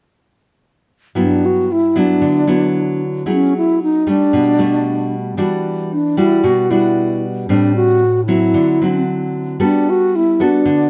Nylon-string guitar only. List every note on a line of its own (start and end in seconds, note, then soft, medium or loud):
1.15 2.18 G2 medium
1.15 1.68 F#3 soft
1.15 1.68 B3 soft
1.15 1.68 E4 medium
1.96 2.44 F#3 medium
1.96 2.44 B3 medium
1.96 2.44 E4 medium
2.21 3.24 D3 medium
2.47 3.22 F#3 medium
2.47 3.22 B3 soft
2.47 3.23 E4 medium
3.26 4.06 F#3 medium
3.26 3.79 A3 soft
3.26 3.79 E4 medium
3.26 3.79 G#4 soft
4.07 4.55 G3 medium
4.07 4.55 A3 medium
4.33 5.36 B2 medium
4.59 5.33 G3 medium
4.59 5.34 A3 medium
5.37 6.40 E3 medium
5.37 5.90 G3 soft
5.37 5.90 D4 medium
5.37 5.90 F#4 medium
6.17 6.66 G3 medium
6.17 6.66 D4 medium
6.17 6.66 F#4 medium
6.44 7.46 B2 medium
6.70 7.45 G3 soft
6.70 7.45 D4 medium
6.70 7.46 F#4 medium
7.49 8.52 A2 medium
7.49 8.01 G3 soft
7.49 8.02 C4 soft
7.49 8.02 D4 medium
8.28 8.77 F#3 medium
8.28 8.77 C4 medium
8.28 8.77 E4 medium
8.54 9.57 D3 medium
8.81 9.56 F#3 soft
8.81 9.56 C4 medium
8.81 9.57 E4 medium
9.60 10.63 G3 medium
9.60 10.12 B3 medium
9.60 10.13 F#4 soft
9.60 10.13 A4 medium
10.40 10.88 B3 medium
10.40 10.89 F#4 medium
10.40 10.89 A4 medium
10.65 10.90 D3 medium